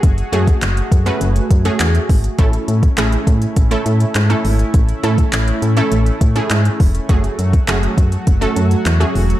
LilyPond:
<<
  \new Staff \with { instrumentName = "Analog synth pad" } { \time 4/4 \key fis \minor \tempo 4 = 102 <a fis' gis'>1 | <cis' e'>1~ | <cis' e'>1 | <fis fis'>1 | }
  \new Staff \with { instrumentName = "Synth pluck" } { \time 4/4 \key fis \minor r8 <a cis' fis' gis'>8. r8 <a cis' fis' b'>8. r16 <a cis' fis' gis'>8. r8 | <a cis' e' a'>8. r16 <a cis' e' gis'>8. r8 <a cis' e' a'>8. r16 <a cis' e' a'>8. | r8 <a cis' e' a'>8. r8 <a cis' e' a'>8. r16 <a cis' e' gis'>8. r8 | <a cis' fis' gis'>8. r16 <a cis' fis' gis'>8. r8 <a cis' fis' a'>8. r16 <a cis' fis' gis'>8. | }
  \new Staff \with { instrumentName = "FM bass" } { \clef bass \time 4/4 \key fis \minor fis,,8 fis,8 fis,,8 fis,8 fis,,8 fis,8 e,8 gis,,8 | a,,8 a,8 a,,8 a,8 a,,8 a,8 gis,8 gis,,8 | a,,8 a,8 a,,8 a,8 a,,8 a,8 gis,8 e,,8 | fis,,8 fis,8 fis,,8 fis,8 fis,,8 fis,8 e,8 e,,8 | }
  \new DrumStaff \with { instrumentName = "Drums" } \drummode { \time 4/4 <hh bd>16 hh16 hh16 <hh bd>16 <hc hh>16 hh16 <hh bd>16 hh16 hh16 hh16 <hh bd>16 hh16 <hc hh>16 hh16 <hho bd>16 hh16 | <hh bd>16 hh16 hh16 <hh bd>16 <hc hh>16 hh16 <hh bd>16 hh16 <hh bd>16 hh16 hh16 hh16 <hc hh>16 hh16 hho16 hh16 | <hh bd>16 hh16 hh16 <hh bd>16 <hc hh>16 hh16 hh16 hh16 hh16 hh16 <hh bd>16 hh16 <hc hh>16 hh16 <hho bd>16 hh16 | <hh bd>16 hh16 hh16 <hh bd>16 <hc hh>16 hh16 <hh bd>16 hh16 <hh bd>16 hh16 hh16 hh16 <hc hh>16 hh16 hho16 hh16 | }
>>